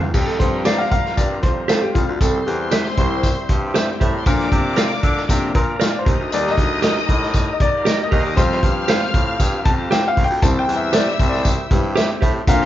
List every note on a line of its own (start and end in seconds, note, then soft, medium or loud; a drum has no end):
0.00 0.14 A3 medium
0.00 0.14 C4 medium
0.00 0.14 F4 medium
0.00 floor tom medium
0.14 0.35 F2 medium
0.14 4.23 G3 medium
0.14 4.23 C4 medium
0.14 2.19 F4 medium
0.14 0.26 G4 medium
0.14 1.91 A#4 medium
0.14 1.92 A#5 loud
0.14 kick loud
0.14 crash loud
0.14 tambourine medium
0.26 0.40 A4 medium
0.26 snare soft
0.39 0.82 G2 medium
0.39 1.13 F3 soft
0.39 1.13 G3 soft
0.39 1.14 C4 medium
0.39 0.66 C5 medium
0.39 kick medium
0.39 closed hi-hat medium
0.65 0.79 G4 medium
0.65 0.80 C5 medium
0.65 0.79 D5 medium
0.65 0.80 F5 medium
0.65 snare loud
0.65 closed hi-hat medium
0.65 tambourine medium
0.78 0.90 F5 medium
0.78 snare soft
0.92 1.18 F5 medium
0.92 kick medium
0.92 closed hi-hat medium
1.06 snare soft
1.17 1.45 G2 medium
1.17 1.44 D5 medium
1.17 kick medium
1.17 closed hi-hat medium
1.17 tambourine medium
1.43 1.64 F2 medium
1.43 1.70 C5 medium
1.43 kick medium
1.43 closed hi-hat medium
1.68 1.80 F2 medium
1.68 1.82 G4 medium
1.68 1.82 A4 medium
1.68 1.83 C5 loud
1.68 1.83 F5 medium
1.68 snare loud
1.68 closed hi-hat medium
1.68 tambourine medium
1.81 1.94 G4 medium
1.95 2.06 C2 medium
1.95 2.19 F4 medium
1.95 kick medium
1.95 closed hi-hat medium
2.08 2.18 D2 medium
2.21 2.41 C2 medium
2.21 4.25 E4 medium
2.21 2.47 A4 medium
2.21 3.59 C5 medium
2.21 3.59 C6 loud
2.21 kick loud
2.21 closed hi-hat medium
2.21 tambourine medium
2.46 2.88 E2 medium
2.46 3.00 G4 medium
2.46 closed hi-hat medium
2.71 2.85 G4 medium
2.71 2.86 C5 medium
2.71 2.86 E5 medium
2.71 snare loud
2.71 closed hi-hat medium
2.71 tambourine medium
2.85 snare soft
2.97 3.39 C2 medium
2.97 3.32 E3 medium
2.97 3.32 G3 medium
2.97 3.33 C4 medium
2.97 4.23 C5 loud
2.97 kick medium
2.97 closed hi-hat medium
3.23 kick medium
3.23 closed hi-hat medium
3.23 tambourine medium
3.49 3.91 G2 medium
3.49 kick medium
3.49 closed hi-hat medium
3.67 3.75 D4 soft
3.67 3.75 D5 medium
3.74 3.84 E4 medium
3.74 3.88 G4 medium
3.74 3.89 C5 loud
3.74 3.84 E5 medium
3.74 3.89 E5 medium
3.74 snare medium
3.74 closed hi-hat medium
3.74 tambourine loud
3.84 3.92 F4 medium
3.84 3.92 F5 medium
3.92 4.01 G4 medium
3.92 4.01 G5 medium
4.00 4.22 A2 medium
4.00 4.11 G4 medium
4.00 4.10 A4 medium
4.00 4.12 C5 medium
4.00 4.12 E5 medium
4.00 4.09 A5 medium
4.00 kick medium
4.00 closed hi-hat medium
4.10 4.18 A#4 medium
4.10 4.18 A#5 medium
4.18 4.27 C5 medium
4.18 4.27 C6 medium
4.25 4.47 A#2 loud
4.25 4.60 D3 medium
4.25 4.61 F3 medium
4.25 4.61 A#3 medium
4.25 6.05 D4 medium
4.25 6.05 F4 medium
4.25 8.34 A#4 medium
4.25 5.77 D5 medium
4.25 5.77 D6 loud
4.25 kick loud
4.25 closed hi-hat medium
4.25 tambourine medium
4.40 snare soft
4.52 4.93 C3 loud
4.52 kick medium
4.52 closed hi-hat medium
4.76 4.91 A#4 medium
4.76 4.91 D5 medium
4.76 4.92 F5 medium
4.76 snare loud
4.76 closed hi-hat loud
4.76 tambourine medium
4.91 snare soft
5.03 5.24 D3 medium
5.03 kick medium
5.03 closed hi-hat medium
5.17 snare soft
5.29 5.50 C3 medium
5.29 5.52 D3 soft
5.29 5.52 F3 soft
5.29 5.53 A#3 medium
5.29 kick medium
5.29 closed hi-hat medium
5.29 tambourine medium
5.55 5.76 A#2 medium
5.55 5.92 A#4 medium
5.55 kick medium
5.55 closed hi-hat medium
5.80 5.91 A#2 medium
5.80 5.94 A#4 medium
5.80 5.94 D5 medium
5.80 5.94 F5 medium
5.80 snare loud
5.80 closed hi-hat medium
5.80 tambourine medium
5.91 5.98 D5 medium
5.99 6.34 C5 medium
6.05 6.17 D#2 medium
6.05 8.35 D#4 medium
6.05 12.42 G4 medium
6.05 7.69 D#5 loud
6.05 7.69 D#6 loud
6.05 kick loud
6.05 closed hi-hat medium
6.20 6.30 D2 medium
6.32 6.53 D#2 loud
6.32 8.34 G3 soft
6.32 8.34 D#4 medium
6.32 8.34 A#4 medium
6.32 6.51 D5 loud
6.32 closed hi-hat medium
6.32 tambourine medium
6.46 snare soft
6.51 7.23 D#5 loud
6.57 6.99 D2 loud
6.57 kick medium
6.57 closed hi-hat medium
6.82 6.96 G4 medium
6.82 6.97 A#4 medium
6.82 6.97 D#5 medium
6.82 snare loud
6.82 closed hi-hat medium
6.82 tambourine medium
6.97 snare soft
7.09 7.50 A2 medium
7.09 kick medium
7.09 closed hi-hat medium
7.23 snare soft
7.34 kick medium
7.34 closed hi-hat medium
7.34 tambourine medium
7.53 7.60 D#5 medium
7.60 8.05 D5 loud
7.60 kick medium
7.60 closed hi-hat medium
7.77 7.86 F4 medium
7.77 7.86 F5 medium
7.85 7.99 G4 medium
7.85 7.95 G4 medium
7.85 8.00 A#4 medium
7.85 8.00 D#5 loud
7.85 7.95 G5 medium
7.85 snare loud
7.85 closed hi-hat medium
7.85 tambourine loud
7.95 8.03 A4 medium
7.95 8.03 A5 medium
8.03 8.12 A#4 medium
8.03 8.38 D#5 loud
8.03 8.12 A#5 medium
8.11 8.33 D#2 medium
8.11 8.22 G4 medium
8.11 8.22 A#4 medium
8.11 8.21 C5 medium
8.11 8.23 D#5 medium
8.11 8.21 C6 medium
8.11 kick medium
8.11 open hi-hat soft
8.22 8.30 D5 medium
8.22 8.30 D6 medium
8.29 8.38 D#5 medium
8.29 8.38 D#6 loud
8.36 8.58 F2 loud
8.36 9.10 F3 medium
8.36 9.10 G3 soft
8.36 9.10 C4 medium
8.36 12.43 C4 medium
8.36 10.40 F4 medium
8.36 8.52 C5 loud
8.36 10.13 F5 medium
8.36 10.14 F6 loud
8.36 kick loud
8.36 closed hi-hat loud
8.36 tambourine medium
8.52 9.27 C5 medium
8.52 snare soft
8.63 9.04 G2 medium
8.63 kick medium
8.63 closed hi-hat medium
8.88 9.02 G4 medium
8.88 9.02 C5 medium
8.88 9.03 F5 medium
8.88 snare loud
8.88 closed hi-hat medium
8.88 tambourine medium
9.02 snare soft
9.14 9.35 A2 medium
9.14 kick medium
9.14 closed hi-hat medium
9.40 9.67 G2 medium
9.40 kick medium
9.40 closed hi-hat medium
9.40 tambourine medium
9.65 9.86 F2 medium
9.65 9.92 A5 loud
9.65 kick loud
9.65 closed hi-hat medium
9.91 10.01 F2 medium
9.91 10.04 G4 medium
9.91 10.05 C5 medium
9.91 10.05 F5 loud
9.91 10.07 G5 loud
9.91 snare loud
9.91 closed hi-hat medium
9.91 tambourine medium
10.08 10.26 F5 loud
10.17 10.27 C2 medium
10.17 kick medium
10.17 open hi-hat soft
10.24 10.42 G5 loud
10.29 10.40 D2 medium
10.41 10.63 C2 medium
10.41 11.69 E3 medium
10.41 11.70 G3 medium
10.41 11.70 C4 medium
10.41 12.45 E4 medium
10.41 12.18 E5 loud
10.41 10.60 A5 loud
10.41 12.18 E6 loud
10.41 kick loud
10.41 closed hi-hat medium
10.41 tambourine medium
10.59 10.77 G5 loud
10.67 11.09 E2 medium
10.67 closed hi-hat medium
10.76 10.94 E5 medium
10.93 11.06 G4 medium
10.93 11.07 C5 medium
10.93 11.11 D5 medium
10.93 11.07 E5 medium
10.93 snare loud
10.93 closed hi-hat loud
10.93 tambourine medium
11.07 snare soft
11.12 11.29 E5 medium
11.19 11.60 C2 medium
11.19 kick medium
11.19 closed hi-hat medium
11.29 11.46 D5 medium
11.34 snare soft
11.45 12.18 E5 medium
11.45 kick medium
11.45 closed hi-hat medium
11.45 tambourine medium
11.71 12.12 G2 medium
11.71 11.93 E3 medium
11.71 11.94 G3 soft
11.71 11.94 C4 medium
11.71 kick loud
11.71 closed hi-hat medium
11.96 12.09 G4 loud
11.96 12.09 C5 medium
11.96 12.10 E5 loud
11.96 snare loud
11.96 closed hi-hat medium
11.96 tambourine medium
12.21 12.42 A2 medium
12.21 12.31 G4 medium
12.21 12.32 C5 medium
12.21 12.32 E5 medium
12.21 kick medium
12.21 closed hi-hat medium
12.47 12.65 A#2 loud
12.47 12.65 D3 medium
12.47 12.65 F3 medium
12.47 12.65 A#3 medium
12.47 12.65 D4 medium
12.47 12.65 F4 medium
12.47 12.65 A#4 medium
12.47 12.65 C5 loud
12.47 12.65 F5 medium
12.47 12.65 C6 loud
12.47 kick loud
12.47 closed hi-hat medium
12.47 tambourine medium
12.61 snare soft